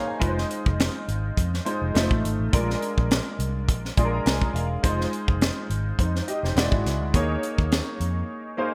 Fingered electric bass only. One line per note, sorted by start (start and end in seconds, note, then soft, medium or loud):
0.21 0.43 F1 medium
0.66 0.88 F1 medium
1.08 1.30 G#1 medium
1.37 1.59 F2 medium
1.82 1.91 F1 medium
1.95 2.07 F1 medium
2.11 2.21 A1 medium
2.24 2.35 G#1 medium
2.39 2.49 A1 medium
2.53 2.74 A#1 medium
2.98 3.19 A#1 medium
3.39 3.68 C2 medium
3.68 3.90 A#1 medium
3.98 4.19 A#1 medium
4.26 4.47 C2 medium
4.54 4.75 E1 medium
4.83 5.05 F1 medium
5.28 5.49 F1 medium
5.70 5.91 G#1 medium
5.99 6.20 F2 medium
6.43 6.53 F1 medium
6.56 6.67 E1 medium
6.72 6.82 G#1 medium
6.85 7.01 C#2 medium
7.01 7.11 D2 medium
7.14 7.35 D#2 medium
7.58 7.80 D#2 medium
8.00 8.22 F2 medium